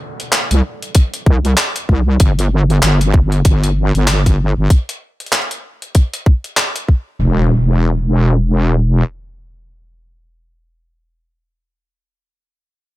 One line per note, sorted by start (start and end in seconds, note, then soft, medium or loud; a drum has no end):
0.00 2.20 A4 medium
0.00 2.20 D5 medium
0.00 2.20 F#5 medium
0.00 downlifter medium
0.20 closed hi-hat soft
0.32 clap loud
0.32 closed hi-hat medium
0.51 0.62 C2 medium
0.51 closed hi-hat medium
0.82 closed hi-hat soft
0.95 kick loud
0.95 closed hi-hat medium
1.14 closed hi-hat medium
1.26 1.55 C2 medium
1.26 kick loud
1.45 closed hi-hat soft
1.57 clap loud
1.57 closed hi-hat medium
1.76 closed hi-hat medium
1.89 2.18 C2 medium
1.89 kick medium
2.20 2.80 G1 medium
2.20 kick loud
2.20 closed hi-hat medium
2.39 closed hi-hat soft
2.70 closed hi-hat soft
2.82 3.43 G1 medium
2.82 clap loud
2.82 closed hi-hat medium
3.01 closed hi-hat soft
3.14 kick loud
3.32 closed hi-hat soft
3.45 3.92 G1 loud
3.45 kick loud
3.45 closed hi-hat medium
3.64 closed hi-hat soft
3.95 4.54 G1 medium
3.95 closed hi-hat soft
4.08 clap loud
4.08 closed hi-hat medium
4.26 kick medium
4.26 closed hi-hat medium
4.57 4.68 G1 medium
4.70 kick loud
4.70 closed hi-hat medium
4.89 closed hi-hat soft
5.20 closed hi-hat soft
5.26 closed hi-hat soft
5.32 clap loud
5.32 closed hi-hat medium
5.42 closed hi-hat soft
5.51 closed hi-hat soft
5.82 closed hi-hat soft
5.95 kick loud
5.95 closed hi-hat medium
6.14 closed hi-hat soft
6.26 kick loud
6.44 closed hi-hat soft
6.57 clap loud
6.57 closed hi-hat medium
6.76 closed hi-hat soft
6.89 kick medium
7.19 9.03 E1 medium
7.19 impact medium